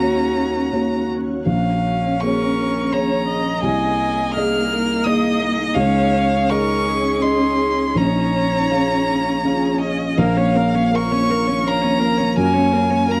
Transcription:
Already playing: D#2 A#3 C#4 F#4 A#5
0.00 A#3 F#4 C#5
0.72 A#3 F#4 C#5
1.46 A#1 C#4 G#4 F5
2.20 A#3 G#4 A#4 C#5 C#6
2.92 A#3 G#4 C#5 A#5
3.29 D#5
3.62 C2 A#3 D#4 G#5
4.34 A#3 G#4 D#5 F6
4.73 A#4
5.04 A#3 G#4 D#5 D#6
5.40 D#5
5.74 C#2 C#4 C#5 F5
6.49 C#4 G#4 A#4 D#5 C#6
6.88 G#4
7.22 C#4 G#4 D#5 C6
7.95 A#1 C#4 F4 G#4 C#5 A#5
8.70 C#4 G#4 F5
9.44 C#4 G#4 F5
9.81 D#5
10.17 A#1 A#3 C#4 F4 A#4 F5
10.36 A#3 C#4 C#5
10.55 A#3 A#4 C#5
10.74 A#3 C#4 C#5
10.93 A#3 A#4 C#6
11.12 A#3 C#4 C#5
11.30 A#3 A#4
11.47 A#3 C#4 C#5
11.64 A#3 A#4 C#5 A#5
11.81 A#3 C#4 C#5
11.99 A#3 A#4
12.17 A#3 C#4 C#5
12.37 F#2 A#3 F#4 A#4 G#5
12.54 A#3 C#4 C#5
12.73 A#3 A#4 C#5
12.90 A#3 C#4 C#5
13.08 A#3 A#4 A#5

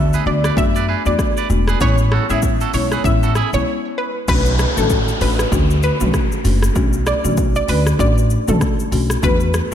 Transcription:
Already playing: D2 A3 B3 D4 F#4
0.13 G#4 B4, shaker
0.26 D2 A3 B3 D4 F#4 D5
0.44 B4 D5, cross-stick, shaker
0.57 F#2 A3 B3 D4 F#4 E5, kick, shaker
0.76 B4 D5, shaker
0.89 G#4 B4
1.05 E2 A3 B3 D4 F#4 D5, shaker
1.19 kick, cross-stick, shaker
1.37 B4 D5, shaker
1.50 E1 A3 B3 D4 F#4, shaker
1.68 G#4 B4, cross-stick, shaker
1.80 A1 G#3 B3 C#4 E4 G#4 B4 C#5, kick, shaker
1.98 shaker
2.12 F#4 A4, cross-stick
2.29 A1 G#3 B3 C#4 E4 G#4 E5, shaker
2.42 kick, shaker
2.61 F#4 A4, shaker
2.73 B1 G#3 B3 C#4 E4 C#5, open hi-hat, shaker
2.92 G#4 B4, cross-stick, shaker
3.04 A1 G#3 B3 C#4 E4 E5, kick, shaker
3.23 F#4 A4, shaker
3.35 E4 G#4, cross-stick, shaker
3.53 B1 G#3 B3 C#4 E4 C#5, shaker
3.98 B4
4.28 B1 A3 C#4 D4 F#4 B4, kick, crash, downlifter, shaker
4.46 shaker
4.59 cross-stick, shaker
4.77 A1 A3 C#4 D4 F#4 A4, mid tom, shaker
4.90 kick, shaker
5.08 shaker
5.21 A1 A3 C#4 D4 F#4 B4, open hi-hat, shaker
5.39 cross-stick, shaker
5.52 D2 A3 C#4 D4 F#4, kick, shaker
5.71 shaker
5.83 B4, shaker
6.00 B1 A3 C#4 D4 F#4, mid tom, shaker
6.14 kick, cross-stick, shaker
6.32 shaker
6.44 F#1 A3 C#4 D4 F#4, open hi-hat, shaker
6.62 cross-stick, shaker
6.75 B1 A3 C#4 D4 F#4, kick, shaker
6.93 shaker
7.06 D5, cross-stick, shaker
7.24 B1 A3 C#4 D4 F#4, mid tom, shaker
7.37 kick, shaker
7.56 D5, shaker
7.68 D2 A3 C#4 D4 F#4 B4, open hi-hat, shaker
7.87 cross-stick, shaker
7.99 A1 A3 C#4 D4 F#4 D5, kick, shaker
8.18 shaker
8.30 shaker
8.48 B1 A3 C#4 D4 F#4 A4, mid tom, shaker
8.61 kick, cross-stick, shaker
8.80 shaker
8.92 B1 A3 C#4 D4 F#4, open hi-hat, shaker
9.10 cross-stick, shaker
9.23 E2 A3 B3 D4 F#4 B4, kick, shaker
9.40 shaker
9.54 cross-stick, shaker

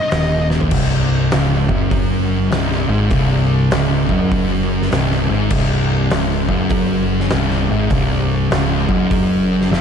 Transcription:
Already playing: D#5
0.11 D#1 D#2, snare, open hi-hat
0.50 snare
0.61 floor tom
0.71 C1 C2, kick, crash
1.31 C#1 C#2, snare, open hi-hat
1.69 F#1 F#2, kick
1.91 kick, open hi-hat
2.51 C1 C2, snare, open hi-hat
2.71 snare
2.88 G#1 G#2
3.10 C1 C2, kick, open hi-hat
3.71 C#1 C#2, snare, open hi-hat
4.09 F#1 F#2, kick
4.32 kick, open hi-hat
4.82 snare
4.91 C1 C2, snare, open hi-hat
5.11 snare
5.29 G#1 G#2
5.50 C1 C2, kick, crash
6.11 C#1 C#2, snare, open hi-hat
6.49 F#1 F#2, kick
6.70 kick, open hi-hat
7.20 snare
7.30 C1 C2, snare, open hi-hat
7.50 snare
7.69 G#1 G#2
7.90 C1 C2, kick, open hi-hat
8.51 C#1 C#2, snare, open hi-hat
8.89 F#1 F#2, kick
9.11 kick, open hi-hat
9.61 snare
9.71 F1 F2, snare

